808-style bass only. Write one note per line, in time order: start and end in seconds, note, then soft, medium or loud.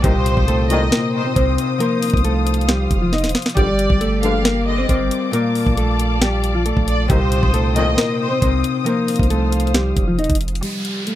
0.04 0.36 C2 loud
0.37 0.90 C2 loud
1.36 1.57 C2 loud
2.14 2.88 C2 loud
2.91 3.25 F1 loud
3.24 3.34 D#1 loud
3.57 3.89 G1 loud
3.90 4.85 G1 loud
4.89 5.10 G1 loud
5.67 6.73 A#1 loud
6.77 7.08 A#1 loud
7.10 7.42 C2 loud
7.43 7.96 C2 loud
8.42 8.63 C2 loud
9.19 9.94 C2 loud
9.97 10.20 F1 loud
10.19 10.29 D#1 loud
10.30 10.61 F1 loud